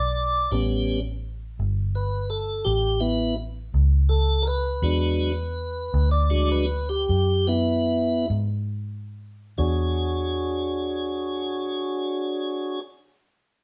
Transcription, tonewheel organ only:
0, 0, Header, 1, 2, 480
1, 0, Start_track
1, 0, Tempo, 715990
1, 355, Time_signature, 12, 3, 24, 8
1, 3236, Tempo, 755668
1, 4676, Tempo, 814111
1, 5636, Tempo, 882353
1, 8311, End_track
2, 0, Start_track
2, 0, Title_t, "Tonewheel organ"
2, 0, Program_c, 0, 16
2, 0, Note_on_c, 0, 74, 104
2, 339, Note_off_c, 0, 74, 0
2, 346, Note_on_c, 0, 55, 56
2, 349, Note_on_c, 0, 59, 49
2, 354, Note_on_c, 0, 61, 60
2, 669, Note_off_c, 0, 55, 0
2, 671, Note_off_c, 0, 59, 0
2, 673, Note_off_c, 0, 61, 0
2, 1309, Note_on_c, 0, 71, 82
2, 1541, Note_on_c, 0, 69, 90
2, 1543, Note_off_c, 0, 71, 0
2, 1775, Note_on_c, 0, 67, 87
2, 1779, Note_off_c, 0, 69, 0
2, 2013, Note_on_c, 0, 64, 94
2, 2014, Note_on_c, 0, 59, 83
2, 2015, Note_off_c, 0, 67, 0
2, 2245, Note_off_c, 0, 59, 0
2, 2255, Note_off_c, 0, 64, 0
2, 2743, Note_on_c, 0, 69, 90
2, 2967, Note_on_c, 0, 70, 70
2, 2982, Note_off_c, 0, 69, 0
2, 2995, Note_off_c, 0, 70, 0
2, 3000, Note_on_c, 0, 71, 108
2, 3237, Note_on_c, 0, 54, 57
2, 3242, Note_on_c, 0, 56, 52
2, 3245, Note_on_c, 0, 62, 58
2, 3547, Note_off_c, 0, 54, 0
2, 3550, Note_off_c, 0, 56, 0
2, 3552, Note_off_c, 0, 62, 0
2, 4041, Note_off_c, 0, 71, 0
2, 4053, Note_on_c, 0, 74, 84
2, 4172, Note_on_c, 0, 54, 46
2, 4173, Note_on_c, 0, 62, 53
2, 4175, Note_on_c, 0, 56, 41
2, 4294, Note_off_c, 0, 74, 0
2, 4309, Note_on_c, 0, 71, 89
2, 4398, Note_off_c, 0, 54, 0
2, 4398, Note_off_c, 0, 62, 0
2, 4399, Note_off_c, 0, 56, 0
2, 4546, Note_off_c, 0, 71, 0
2, 4548, Note_on_c, 0, 67, 84
2, 4898, Note_off_c, 0, 67, 0
2, 4900, Note_on_c, 0, 59, 87
2, 4907, Note_on_c, 0, 64, 96
2, 5362, Note_off_c, 0, 59, 0
2, 5374, Note_off_c, 0, 64, 0
2, 6101, Note_on_c, 0, 62, 66
2, 6101, Note_on_c, 0, 66, 66
2, 6104, Note_on_c, 0, 68, 65
2, 6106, Note_on_c, 0, 73, 66
2, 7851, Note_off_c, 0, 62, 0
2, 7851, Note_off_c, 0, 66, 0
2, 7854, Note_off_c, 0, 68, 0
2, 7855, Note_off_c, 0, 73, 0
2, 8311, End_track
0, 0, End_of_file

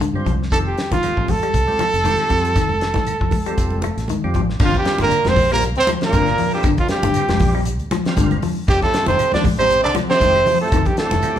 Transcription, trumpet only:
0, 0, Header, 1, 2, 480
1, 0, Start_track
1, 0, Key_signature, -2, "minor"
1, 0, Tempo, 510638
1, 478, Time_signature, 4, 2, 24, 8
1, 10708, End_track
2, 0, Start_track
2, 0, Title_t, "Trumpet"
2, 0, Program_c, 0, 56
2, 490, Note_on_c, 0, 69, 102
2, 548, Note_off_c, 0, 69, 0
2, 629, Note_on_c, 0, 67, 83
2, 845, Note_off_c, 0, 67, 0
2, 872, Note_on_c, 0, 65, 98
2, 1226, Note_on_c, 0, 69, 111
2, 1240, Note_off_c, 0, 65, 0
2, 3858, Note_off_c, 0, 69, 0
2, 4363, Note_on_c, 0, 65, 93
2, 4470, Note_off_c, 0, 65, 0
2, 4494, Note_on_c, 0, 67, 95
2, 4701, Note_off_c, 0, 67, 0
2, 4725, Note_on_c, 0, 70, 104
2, 4972, Note_on_c, 0, 72, 99
2, 4986, Note_off_c, 0, 70, 0
2, 5196, Note_off_c, 0, 72, 0
2, 5203, Note_on_c, 0, 70, 103
2, 5306, Note_off_c, 0, 70, 0
2, 5445, Note_on_c, 0, 72, 99
2, 5547, Note_off_c, 0, 72, 0
2, 5689, Note_on_c, 0, 70, 100
2, 6121, Note_off_c, 0, 70, 0
2, 6154, Note_on_c, 0, 67, 77
2, 6259, Note_off_c, 0, 67, 0
2, 6389, Note_on_c, 0, 65, 86
2, 6483, Note_off_c, 0, 65, 0
2, 6488, Note_on_c, 0, 67, 93
2, 7168, Note_off_c, 0, 67, 0
2, 8173, Note_on_c, 0, 67, 106
2, 8292, Note_off_c, 0, 67, 0
2, 8298, Note_on_c, 0, 69, 99
2, 8520, Note_off_c, 0, 69, 0
2, 8535, Note_on_c, 0, 72, 97
2, 8758, Note_off_c, 0, 72, 0
2, 8778, Note_on_c, 0, 74, 93
2, 8885, Note_off_c, 0, 74, 0
2, 9013, Note_on_c, 0, 72, 109
2, 9236, Note_off_c, 0, 72, 0
2, 9247, Note_on_c, 0, 74, 97
2, 9356, Note_off_c, 0, 74, 0
2, 9498, Note_on_c, 0, 72, 115
2, 9941, Note_off_c, 0, 72, 0
2, 9975, Note_on_c, 0, 69, 84
2, 10211, Note_on_c, 0, 67, 79
2, 10225, Note_off_c, 0, 69, 0
2, 10316, Note_off_c, 0, 67, 0
2, 10325, Note_on_c, 0, 69, 94
2, 10708, Note_off_c, 0, 69, 0
2, 10708, End_track
0, 0, End_of_file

